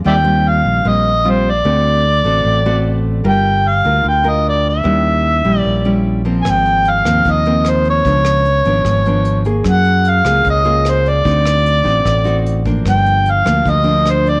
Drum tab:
HH |--------|--------|--------|--------|
SD |--------|--------|--------|--------|
BD |--------|--------|--------|--------|

HH |xxxxxxxx|xxxxxxxx|xxxxxxxx|xxxxxxxx|
SD |r--r--r-|-r--r---|r--r--r-|-r--r---|
BD |o---o---|o---o---|o---o---|o--oo--o|

HH |xxxxxxxx|
SD |r--r--r-|
BD |o---o---|